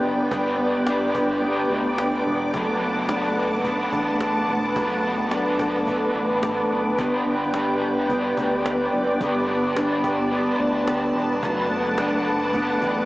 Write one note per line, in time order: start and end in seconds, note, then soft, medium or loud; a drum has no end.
0.00 0.30 F#1 medium
0.00 0.32 B3 medium
0.00 0.31 B3 medium
0.00 0.33 D4 medium
0.00 0.86 D4 medium
0.00 0.33 G4 medium
0.00 1.13 G4 medium
0.00 0.33 B4 medium
0.00 2.50 B4 medium
0.00 2.50 D5 medium
0.00 2.50 G5 medium
0.00 11.39 D6 medium
0.00 cajon slap soft
0.31 1.66 G1 loud
0.31 0.87 G3 medium
0.31 0.58 B3 medium
0.31 0.86 B3 medium
0.31 0.88 D4 medium
0.31 0.88 G4 medium
0.31 0.91 B4 medium
0.31 cajon bass loud
0.59 1.42 B3 medium
0.59 cajon slap soft
0.86 1.40 B3 medium
0.86 1.70 D4 medium
0.86 1.44 D4 medium
0.86 1.44 G4 medium
0.86 cajon slap loud
0.91 1.50 B4 medium
1.14 1.96 G4 medium
1.14 cajon bass medium
1.41 2.54 B3 medium
1.41 2.25 B3 medium
1.41 cajon slap soft
1.45 2.55 D4 medium
1.45 2.55 G4 medium
1.51 2.56 B4 medium
1.70 2.23 D2 medium
1.70 3.09 D4 medium
1.98 2.59 G4 medium
1.98 cajon slap loud
2.25 2.52 E1 loud
2.25 2.81 B3 medium
2.25 cajon slap soft
2.53 3.89 F#1 loud
2.53 3.09 F#3 medium
2.53 4.75 F#3 medium
2.53 3.07 A3 loud
2.53 3.10 D4 medium
2.53 3.10 A4 medium
2.53 11.39 B4 medium
2.53 3.12 B4 loud
2.53 6.95 F#5 medium
2.53 6.95 A5 medium
2.53 cajon bass loud
2.81 3.64 B3 medium
2.81 cajon slap soft
3.09 3.60 A3 medium
3.09 3.92 D4 medium
3.09 3.65 D4 medium
3.09 3.66 A4 medium
3.09 cajon slap loud
3.13 3.71 B4 medium
3.37 4.19 A4 medium
3.62 4.74 A3 medium
3.62 4.48 B3 medium
3.62 4.77 D4 medium
3.62 cajon bass medium
3.69 4.77 A4 medium
3.69 4.78 B4 medium
3.92 4.46 A1 medium
3.92 5.31 D4 medium
3.92 cajon bass medium
4.20 5.58 A4 medium
4.20 cajon slap medium
4.48 4.75 E1 loud
4.48 5.03 B3 medium
4.48 cajon slap soft
4.75 6.11 F#1 loud
4.75 5.31 F#3 medium
4.75 6.98 F#3 medium
4.75 5.30 A3 medium
4.75 5.32 D4 medium
4.75 5.33 A4 loud
4.75 5.34 B4 medium
4.75 cajon bass loud
5.03 5.87 B3 medium
5.03 cajon slap soft
5.31 5.83 A3 medium
5.31 6.15 D4 medium
5.31 5.88 D4 medium
5.31 5.88 A4 medium
5.31 cajon slap loud
5.35 5.94 B4 medium
5.59 6.41 A4 medium
5.59 cajon bass loud
5.84 6.97 A3 medium
5.84 6.70 B3 medium
5.84 7.00 D4 medium
5.84 cajon bass medium
5.91 7.00 A4 medium
5.91 7.01 B4 medium
6.15 6.68 A1 medium
6.15 7.54 D4 medium
6.42 7.04 A4 medium
6.42 cajon slap loud
6.70 6.97 F#1 loud
6.70 6.98 B3 medium
6.98 8.33 G1 loud
6.98 7.54 G3 medium
6.98 7.26 B3 medium
6.98 7.53 B3 medium
6.98 7.54 D4 loud
6.98 7.55 G4 medium
6.98 7.57 B4 loud
6.98 11.39 D5 medium
6.98 9.19 G5 medium
6.98 cajon bass loud
7.26 8.09 B3 medium
7.26 cajon slap soft
7.53 8.07 B3 medium
7.53 8.37 D4 medium
7.53 8.11 D4 medium
7.53 8.11 G4 medium
7.53 cajon slap loud
7.58 8.17 B4 medium
7.82 8.64 G4 medium
7.82 cajon slap soft
8.07 9.21 B3 medium
8.07 8.93 B3 medium
8.07 9.22 D4 medium
8.07 cajon bass medium
8.14 9.22 G4 medium
8.14 9.23 B4 medium
8.37 8.90 D2 medium
8.37 9.75 D4 medium
8.37 cajon bass medium
8.65 10.03 G4 medium
8.65 cajon slap loud
8.93 9.20 F#1 medium
8.93 9.20 B3 medium
8.93 cajon slap soft
9.20 10.55 G1 loud
9.20 9.76 G3 medium
9.20 9.48 B3 medium
9.20 9.76 B3 medium
9.20 9.78 D4 loud
9.20 9.77 G4 loud
9.20 9.80 B4 loud
9.20 13.05 A5 medium
9.20 cajon bass loud
9.48 10.31 B3 medium
9.48 cajon slap soft
9.76 10.30 B3 medium
9.76 10.59 D4 medium
9.76 10.34 D4 medium
9.76 10.33 G4 medium
9.76 cajon slap loud
9.81 10.40 B4 medium
10.04 10.86 G4 medium
10.04 cajon bass loud
10.30 11.43 B3 medium
10.30 11.15 B3 medium
10.30 cajon slap soft
10.34 11.44 D4 medium
10.34 11.45 G4 medium
10.40 11.45 B4 medium
10.59 11.12 D2 medium
10.59 11.99 D4 medium
10.87 11.49 G4 medium
10.87 cajon slap medium
11.15 11.41 E1 loud
11.15 11.70 B3 medium
11.15 cajon slap soft
11.42 12.78 F#1 loud
11.42 11.98 F#3 medium
11.42 13.05 F#3 medium
11.42 11.96 A3 medium
11.42 11.99 D4 medium
11.42 12.00 A4 loud
11.42 13.05 B4 medium
11.42 12.00 B4 loud
11.42 13.05 F#5 medium
11.42 13.05 D6 medium
11.42 cajon bass loud
11.70 12.54 B3 medium
11.70 cajon slap soft
11.97 12.50 A3 medium
11.97 12.82 D4 medium
11.97 12.55 D4 medium
11.97 12.55 A4 medium
11.97 cajon slap medium
12.02 12.61 B4 medium
12.27 13.05 A4 medium
12.51 13.05 A3 medium
12.51 13.05 B3 medium
12.51 cajon bass medium
12.55 13.05 D4 medium
12.55 13.05 A4 medium
12.61 13.05 B4 medium
12.82 13.05 A1 medium
12.82 13.05 D4 medium
12.82 cajon bass medium